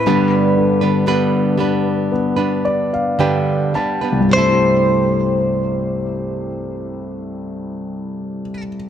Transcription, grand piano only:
<<
  \new Staff \with { instrumentName = "Grand piano" } { \time 4/4 \key c \major \tempo 4 = 52 r2 r8 d''16 f''16 g''8 a''8 | r1 | }
  \new Staff \with { instrumentName = "Grand piano" } { \time 4/4 \key c \major g,8 d8 b8 d'8 b4 g'4 | <c, g, c a e' g'>1 | }
>>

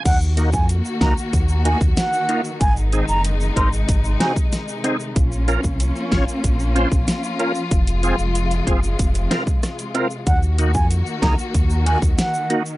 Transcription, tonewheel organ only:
\new Staff \with { instrumentName = "Tonewheel organ" } { \time 4/4 \key ees \dorian \tempo 4 = 94 r8 <bes ees' ges'>8 r8 <bes ees' ges'>8 r8 <bes ees' ges'>8 r8 <bes ees' f'>8 | r8 <c' ees' aes'>8 r8 <c' ees' bes'>8 r8 <c' ees' ges'>8 r8 <c' ees' aes'>8 | r8 <des' f' bes'>8 r8 <des' f' des''>8 r8 <des' f' c''>8 r8 <des' f' bes'>8 | r8 <c' f' aes'>8 r8 <c' f' aes'>8 r8 <c' f' bes'>8 r8 <c' f' bes'>8 |
r8 <bes ees' ges'>8 r8 <bes ees' aes'>8 r8 <bes ees' ges'>8 r8 <bes ees' ges'>8 | }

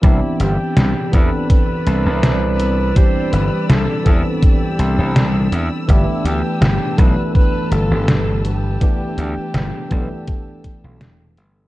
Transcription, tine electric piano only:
\new Staff \with { instrumentName = "Tine electric piano" } { \time 4/4 \key c \lydian \tempo 4 = 82 <e b c' d' g'>4. <e b c' d' a'>2~ <e b c' d' a'>8 | <e g c' d' g'>4. <e b c' d' a'>2~ <e b c' d' a'>8 | <e a b d' g'>4. <e a b d' a'>2~ <e a b d' a'>8 | <e a b d' g'>4. <e a b d' a'>2~ <e a b d' a'>8 | }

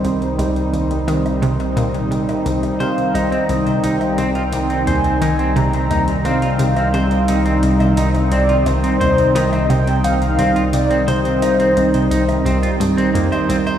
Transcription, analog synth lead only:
\new Staff \with { instrumentName = "Analog synth lead" } { \time 4/4 \key c \minor \tempo 4 = 87 r1 | f''8 ees''4 g''8 g''4 aes''4 | bes''4 f''2~ f''8 r8 | d''8 c''4 ees''8 g''8 f''4 d''8 |
c''2. r4 | }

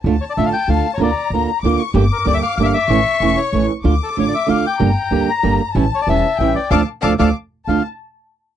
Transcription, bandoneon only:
\new Staff \with { instrumentName = "Bandoneon" } { \time 3/4 \key d \minor \tempo 4 = 189 r8 cis''16 d''16 e''16 f''16 g''8 f''8. cis''16 | d''4 r2 | r8 bes'16 bes'16 d''16 e''16 f''8 f''32 e''32 f''16 e''8~ | e''4. cis''4 r8 |
r8 a'16 a'16 cis''16 d''16 e''8 f''8 g''8~ | g''4. bes''4 r8 | r8 cis''16 d''16 e''4 e''8 d''8 | <a' d'' f''>8 r8 <a' d'' f''>8 <a' d'' f''>8 r4 |
f''8 r2 r8 | }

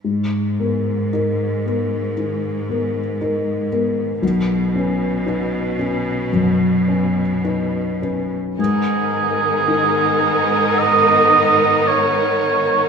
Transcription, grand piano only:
\new Staff \with { instrumentName = "Grand piano" } { \time 4/4 \key gis \minor \tempo 4 = 56 gis,8 <b ais'>8 <dis' ais'>8 <b ais'>8 dis8 <b ais'>8 <dis' ais'>8 <b ais'>8 | b,,8 <cis' b'>8 <dis' b'>8 <cis' b'>8 fis,8 <cis' b'>8 <dis' b'>8 <cis' b'>8 | gis,4 dis2. | }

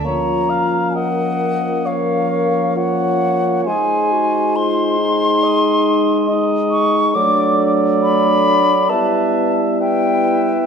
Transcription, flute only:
\new Staff \with { instrumentName = "Flute" } { \time 4/4 \key bes \minor \tempo 4 = 67 bes''4 ges''4 f''4 ges''4 | aes''4 c'''2~ c'''8 des'''8 | \key d \major d'''8 r8 b''4 a''4 g''4 | }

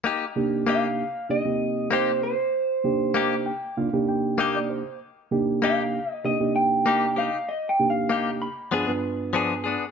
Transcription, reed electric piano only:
\new Staff \with { instrumentName = "Reed electric piano" } { \time 4/4 \key c \minor \tempo 4 = 97 << { r1 | r4. g''8 f''8 g''8 ees''16 d''16 c''8 | r1 | r1 | } \\ { r8 <c bes d' ees' g'>4 r8 <c bes d' ees' g'>16 <c bes c' ees' g'>4. r16 | r8 <c bes d' ees' g'>4 r8 <c bes d' ees' f'>16 <c bes d' ees' g'>4. r16 | r8 <c bes d' ees' g'>4 r8 <c bes d' ees' g'>16 <c bes d' ees' g'>4. r16 | r8 <c bes d' ees' g'>4 r8 <g, b d' f' aes'>16 <g, b d' f' b'>4. r16 | } >> }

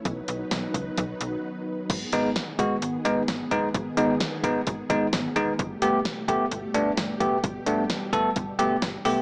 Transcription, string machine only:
\new Staff \with { instrumentName = "String machine" } { \time 4/4 \key gis \phrygian \tempo 4 = 130 << { <fis b'>1 | <dis gis'>1~ | <dis gis'>1 | <b, g'>1~ |
<b, g'>1 | } \\ { dis'1 | b1~ | b1 | a1 |
g1 | } >> }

